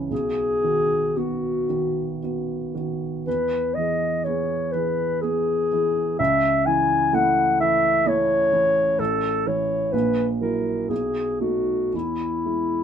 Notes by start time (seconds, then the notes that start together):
Already playing: C#2 E3 C#4
0.10 B1 G#4
0.64 D#3 F#4
1.16 B3 F#4
1.69 D#3 F#4
2.23 B3 F#4
2.75 D#3 F#4
3.27 E2 B4
3.75 E3 G#4 D#5
4.24 B3 G#4 C#5
4.72 E3 G#4 B4
5.21 B3 G#4
5.72 E3 G#4
6.19 C#2 E5
6.66 E3 E4 G#5
7.13 A3 E4 F#5
7.60 E3 E4 E5
8.05 A3 E4 C#5
8.52 E3 E4
8.99 A1 A4
9.46 E3 E4 C#5
9.92 A#1 B4
10.41 F#3 E4 A#4
10.89 B1 G#4
11.40 A3 D#4 F#4
11.93 E2 E4
12.46 G#3 E4